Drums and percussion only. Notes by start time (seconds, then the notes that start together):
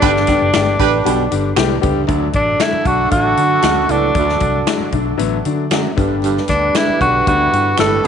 0.02 kick, closed hi-hat
0.16 snare
0.27 kick, snare, closed hi-hat
0.53 finger snap, snare, closed hi-hat
0.80 kick, closed hi-hat
1.06 closed hi-hat
1.32 closed hi-hat
1.56 finger snap, snare, closed hi-hat
1.83 kick, closed hi-hat
2.09 kick, closed hi-hat
2.33 kick, closed hi-hat
2.60 finger snap, snare, closed hi-hat
2.85 kick, closed hi-hat
3.11 kick, closed hi-hat
3.37 closed hi-hat
3.62 finger snap, snare, closed hi-hat
3.89 closed hi-hat
4.15 kick, closed hi-hat
4.29 snare
4.40 kick, closed hi-hat
4.67 finger snap, snare, closed hi-hat
4.92 kick, closed hi-hat
5.19 closed hi-hat
5.45 closed hi-hat
5.71 finger snap, snare, closed hi-hat
5.98 kick, closed hi-hat
6.24 closed hi-hat
6.37 snare
6.48 kick, snare, closed hi-hat
6.75 finger snap, snare, closed hi-hat
7.01 kick, closed hi-hat
7.27 kick, closed hi-hat
7.53 closed hi-hat
7.78 finger snap, snare, closed hi-hat